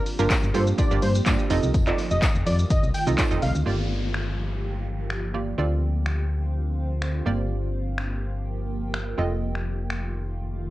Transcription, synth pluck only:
0.19 A#3 D4 F4 G4 A#4
0.54 A#3 D4 F4 G4 A4
0.78 A#3 D4 F4 G4 D5
0.91 A#3 D4 F4 G4 D5
1.26 A#3 D4 F4 G4 D5
1.50 C4 D#4 F4 A4 D#5
1.87 C4 D#4 F4 A4 D#5
3.07 C4 D#4 F4 A4 D#5
3.18 C4 D#4 F4 A4 D5
3.31 C4 D#4 F4 A4 D#5
3.66 A#3 F4 G4 D5
5.34 A#3 F4 G4 D5
5.58 C4 F4 A4 D5
7.26 A#3 F4 G4 D5
9.18 C4 F4 A4 D#5

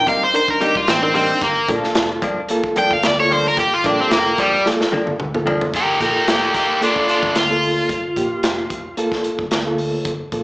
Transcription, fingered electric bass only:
0.75 C2
0.88 A1
1.42 G1
1.69 A#1
1.96 F1
2.91 G1
3.04 D2
3.58 G1
3.84 A#1
4.12 F1
5.07 G1
5.20 D2
5.74 G1
6.01 A#1
6.27 F1
7.23 G1
7.35 D2
7.89 G1
8.17 A#1
8.44 F1
9.39 G1
9.52 D2
10.05 G1
10.32 A#1

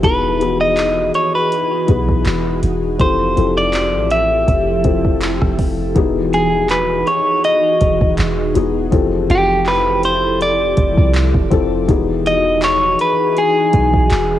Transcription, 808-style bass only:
0.04 E1
1.89 B1
2.26 E1
2.63 E1
3.00 F1
3.38 F1
3.94 A1
4.48 F1
4.85 F1
5.42 F1
5.96 E1
7.81 E1
8.01 E1
8.19 E1
8.56 E1
8.93 F1
9.30 F1
10.78 F1
10.98 C2
11.35 F1
11.52 F1
11.89 E1
13.74 B1
14.11 E1

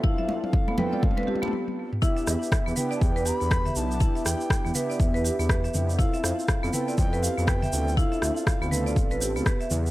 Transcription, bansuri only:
0.04 F5
0.43 F5
0.78 G5
1.03 F5
2.03 E5
2.27 E5
2.77 G5
2.96 A5
3.02 G5
3.27 B5
3.77 A5
4.26 G5
4.76 E5
5.99 F5
6.23 F5
6.73 G5
6.98 G5
7.23 F5
7.48 G5
7.98 F5
8.23 E5
8.36 F5

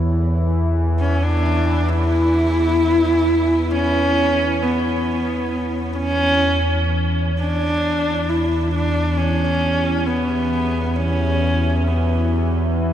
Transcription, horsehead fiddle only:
1.00 C#4
1.23 D4
1.89 E4
3.71 C#4
4.62 B3
5.97 C#4
7.39 D4
8.29 E4
8.75 D4
9.18 C#4
10.07 B3
10.96 C#4
11.87 B3

